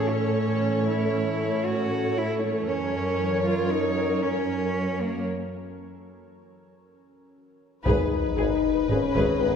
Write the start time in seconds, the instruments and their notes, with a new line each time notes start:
Already playing: cello section A2, synth drone E3 C#4 A4 C#5, cello G#4, viola section A4 C#5
0.10 cello C#4
0.88 cello E4
1.65 cello F#4
2.18 cello E4
2.42 cello A3
2.67 cello section F#2, synth drone F#3 C#4 A#4 C#5, cello C#4, viola section A#4 C#5
3.45 cello F4
3.72 cello D#4
4.23 cello C#4
5.01 cello A#3
7.85 double bass section G#1, tuba G#1, cello section G#2, synth drone D#3 D#4 G#4 D#5, french horn section D#4, viola section G#4, violin section B4, taiko, sub drop
8.37 tuba G#1, double bass section G#1, cello section G#2, violin section G#4, viola section G#4
8.89 tuba G#1, double bass section G#1, cello section G#2, french horn section C#4, viola section G#4, violin section B4
9.14 tuba G#1, double bass section G#1, cello section G#2, viola section G#4, violin section B4, taiko
9.40 tuba G#1, double bass section G#1, cello section G#2, french horn section B3, viola section G#4, violin section B4